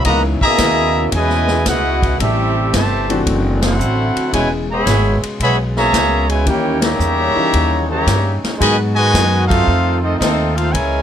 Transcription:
0.02 C#2 B2 C#3 E3 B3 C#4 D#4 E4 F#4 B4 D#5 A#5, kick, ride
0.06 A#3 G#4
0.41 B2 A#3 E4 G#4 D#5 E5 A#5, muted upright bass stroke, kick
0.58 D#2, kick, snare, hi-hat pedal, ride
1.12 E2 B2 G#3 E4 B4 G#5, kick, ride
1.16 E3 D#5
1.30 snare
1.48 snare
1.66 C#2 G#3 B3 E4 F#4 B4 D#5 F#5, kick, snare, hi-hat pedal, ride
2.02 kick, ride
2.18 A1 C3 G3 A3 C4 E4 G4 A4 E5, kick, ride
2.22 G3
2.73 G1 C3 E3 A3 G4 C5 E5 A5, kick, snare, hi-hat pedal, ride
3.09 E3 A3 C4 D4 F#4, ride
3.25 F#1 D3 F#3 C4, kick, ride
3.62 snare, ride
3.66 A3 C4 E4 F#4 A4 C5 F#5
3.79 A1, hi-hat pedal
4.16 muted upright bass stroke, ride
4.32 E1 B2 C#3 E3 G#3 B3 C#4 E4 G#4 B4 C#5 G#5, kick, ride
4.69 C#3 G#3 B3 G#4 C#5 E5 B5
4.86 G#1, kick, snare, hi-hat pedal, ride
5.22 muted upright bass stroke, ride
5.40 B1 C#3 G#3 B3 G#4 C#5 E5 B5, kick, ride
5.76 B2 C#3 A#3 G#4 C#5 E5 A#5, snare
5.93 C#2, kick, snare, hi-hat pedal, ride
6.28 B2 C#3 G#3 E4 B4 C#5 G#5, ride
6.45 D#2 E3 G3 A#3 C#4 D#4 E4 G4 A#4 C#5 G5, kick, ride
6.81 C#3 G3 A#3 G4 C#5 E5 A#5, snare, ride
6.99 E2, hi-hat pedal
7.36 E3 A#3 C#4 D#4 A#4, muted upright bass stroke
7.53 D#2, kick, ride
7.86 C#3 G3 A#3
7.91 G4 C#5 E5 A#5
8.07 G2, kick, snare, hi-hat pedal, ride
8.43 muted upright bass stroke, snare, ride
8.58 G#2 B2 D#3 F#3 G#3 B3 D#4 F#4 G#4 B4 D#5 G#5, kick, ride
8.95 B2 D#3 G#3 F#4 B4 D#5 G#5
9.14 F#2, kick, snare, hi-hat pedal, ride
9.47 A3 C4 D#4 F4 A4 C5 F5, kick
9.51 ride
9.66 F2 D#3 A3 C4 F4, kick
10.01 A3 C4 D#4 F4 A4 D#5
10.17 D#2 A3 C4 D#4 F4 A4 D#5, kick
10.22 snare, hi-hat pedal, ride
10.55 A3 C4 D#4 F4 A4 C5 F5, ride
10.71 C#2 C#3 E3 G#3 A#3 E4 A#4 C#5 G#5, kick, ride

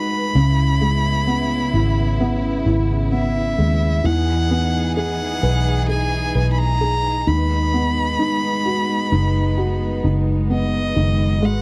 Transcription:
Already playing: G#3 D#4 F#4 B4 D#5 B5
0.34 C#2 C#3 B3 E4
0.81 G#3
1.27 B3
1.74 G#1 E4
2.20 B3
2.66 G#1 E4
3.12 B3 E5
3.58 D#2 G#3
4.03 E2 E3 D#4 G#4 F#5
4.51 B3
4.96 G#4 F#5
5.43 B1 B4
5.89 G#4 G#5
6.35 B1 B4
6.53 B5
6.58 A#5
6.81 G#4
7.27 D#2 D#3 G#3 B3 B5
7.74 B3
8.19 D#4
8.66 F#4
9.12 F#1 D#4
9.58 F#4
10.04 F#1 D#4
10.50 B3 D#5
10.96 F#1 D#3
11.42 G#1 G#3 F#4 B4 F#5

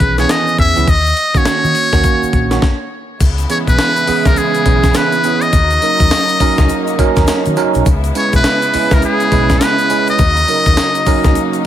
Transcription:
Already playing: D#3 E3 B3 C#4 G#4 B4
0.00 B1, kick, closed hi-hat
0.17 E3 B3 C#4 G#4 C#5, snare, closed hi-hat, shaker
0.29 D#5, snare, closed hi-hat, shaker
0.47 shaker
0.58 E2 E5, kick, closed hi-hat
0.76 C#2 E3 B3 C#4 E4, closed hi-hat, shaker
0.88 D#2 D#5, kick, closed hi-hat, shaker
1.07 shaker
1.17 closed hi-hat
1.34 D#3 A#3 C#4 F#4 C#5, muted fingered electric bass stroke, kick, closed hi-hat, shaker
1.45 muted fingered electric bass stroke, snare, closed hi-hat, shaker
1.64 D#3, shaker
1.75 open hi-hat, shaker
1.93 D#2 D#3 A#3 C#4 F#4, kick, snare, closed hi-hat, shaker
2.04 kick, closed hi-hat, shaker
2.23 muted fingered electric bass stroke, shaker
2.33 A#1, kick, closed hi-hat
2.51 D#3 A#3 C#4 F#4, snare, closed hi-hat, shaker
2.62 kick, snare
3.20 C#2 C#3 G#3 B3 E4, kick, closed hi-hat, crash, tambourine, shaker
3.38 closed hi-hat, shaker
3.49 E3 B3 C#4 G#4 C#5, closed hi-hat, tambourine, shaker
3.67 B1 B4, kick, closed hi-hat, shaker
3.78 snare, closed hi-hat, tambourine, shaker
3.96 closed hi-hat, shaker
4.07 E3 B3 C#4 G#4, muted fingered electric bass stroke, open hi-hat, tambourine, shaker
4.25 C#2 A#4, kick, snare, closed hi-hat, shaker
4.36 G#4, closed hi-hat, shaker
4.55 closed hi-hat, shaker
4.66 B1 E3 B3 C#4 G#4, kick, closed hi-hat, tambourine
4.84 kick, snare, closed hi-hat, shaker
4.94 B4, snare, closed hi-hat, tambourine, shaker
5.12 closed hi-hat, shaker
5.24 E3 B3 C#4 G#4, closed hi-hat, tambourine, shaker
5.41 D#5, closed hi-hat, shaker
5.52 D#2 C#3 F#3 A#3 D#4, kick, closed hi-hat, tambourine, shaker
5.71 closed hi-hat, shaker
5.82 F#3 C#4 D#4 A#4, closed hi-hat, tambourine, shaker
6.00 D#2, kick, closed hi-hat, shaker
6.11 snare, closed hi-hat, tambourine, shaker
6.28 closed hi-hat, shaker
6.40 F#3 C#4 D#4 A#4, muted fingered electric bass stroke, kick, open hi-hat, tambourine, shaker
6.58 C#2, kick, snare, closed hi-hat, shaker
6.69 closed hi-hat, shaker
6.87 closed hi-hat, shaker
6.99 F#3 C#4 D#4 A#4, muted fingered electric bass stroke, kick, closed hi-hat, tambourine
7.16 D#2, kick, snare, closed hi-hat, shaker
7.27 snare, closed hi-hat, tambourine, shaker
7.45 D#3, closed hi-hat, shaker
7.57 F#3 C#4 D#4 A#4, closed hi-hat, tambourine, shaker
7.74 B1, closed hi-hat, shaker
7.85 C#2 G#3 B3 E4, kick, closed hi-hat, tambourine, shaker
8.04 closed hi-hat, shaker
8.15 G#3 C#4 E4 B4 C#5, closed hi-hat, tambourine, shaker
8.33 B1 B4, kick, closed hi-hat, shaker
8.44 snare, closed hi-hat, tambourine, shaker
8.62 closed hi-hat, shaker
8.74 G#3 C#4 E4 B4, muted fingered electric bass stroke, open hi-hat, tambourine, shaker
8.91 C#2 A#4, kick, snare, closed hi-hat, shaker
9.02 G#4, closed hi-hat, shaker
9.20 closed hi-hat, shaker
9.32 B1 G#3 C#4 E4 B4, kick, closed hi-hat, tambourine
9.50 kick, snare, closed hi-hat, shaker
9.61 B4, snare, closed hi-hat, tambourine, shaker
9.79 closed hi-hat, shaker
9.90 G#3 C#4 E4 B4, closed hi-hat, tambourine, shaker
10.07 D#5, closed hi-hat, shaker
10.19 D#2 F#3 A#3 D#4, kick, closed hi-hat, tambourine, shaker
10.37 closed hi-hat, shaker
10.48 F#3 C#4 D#4 A#4, closed hi-hat, tambourine, shaker
10.66 D#2, kick, closed hi-hat, shaker
10.77 snare, closed hi-hat, tambourine, shaker
10.95 closed hi-hat, shaker
11.06 F#3 C#4 D#4 A#4, muted fingered electric bass stroke, kick, open hi-hat, tambourine, shaker
11.24 C#2, kick, snare, closed hi-hat, shaker
11.35 closed hi-hat, shaker
11.53 closed hi-hat, shaker

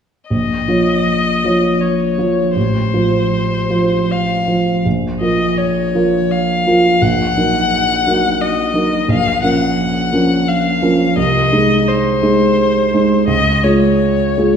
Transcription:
0.29 A#1 D#5
0.68 F3 F4 C#5
1.44 F3 F4 C#5
1.81 C#5
2.18 F3 F4 C#5
2.55 A1 C5
2.94 F3 F4 C5
3.70 F3 F4 C5
4.11 F5
4.48 F3 F4 C5
4.86 A#1
5.20 F3 F4 A#4 D#5
5.58 C#5
5.95 F3 F4 A#4
6.31 F5
6.67 F3 F4 A#4
7.02 A#1 F#5
7.36 F#3 D#4 A#4
8.07 F#3 D#4 A#4
8.41 D#5
8.74 F#3 D#4 A#4
9.08 A#1 F5
9.42 F3 C#4 A#4 F#5
10.13 F3 C#4 A#4
10.48 F5
10.82 F3 C#4 A#4
11.17 C2 D#5
11.52 G#3 D#4 G#4
11.88 C5
12.22 G#3 D#4 G#4
12.94 G#3 D#4 G#4
13.27 C#2 D#5
13.63 G#3 F4 G#4 C#5
14.37 G#3 F4 G#4

